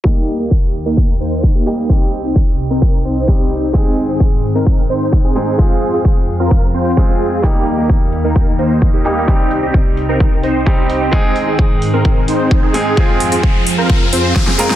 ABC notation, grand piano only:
X:1
M:4/4
L:1/8
Q:1/4=130
K:Fm
V:1 name="Grand piano"
[G,B,EG]6- [G,B,EG] [G,B,EG] | [G,CEG]6 [G,CEG]2 | [A,CEA]6- [A,CEA] [A,CEA] | [A,CFA]6 [A,CFA]2 |
[G,B,EG]6- [G,B,EG] [G,B,EG] | [G,CEG]6 [G,CEG]2 | [A,CEA]6- [A,CEA] [A,CEA] | [A,CFA]6 z [A,CFB] |]